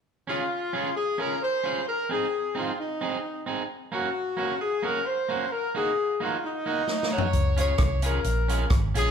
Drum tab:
HH |------------------------|------------------------|------------------------|------------------------|
SD |------------------------|------------------------|------------------------|------------------o-o---|
FT |------------------------|------------------------|------------------------|----------------------o-|
BD |------------------------|------------------------|------------------------|------------------------|

HH |x--x--x--x--x--x--x--x--|
SD |------r-----------r-----|
FT |------------------------|
BD |------o-----------o-----|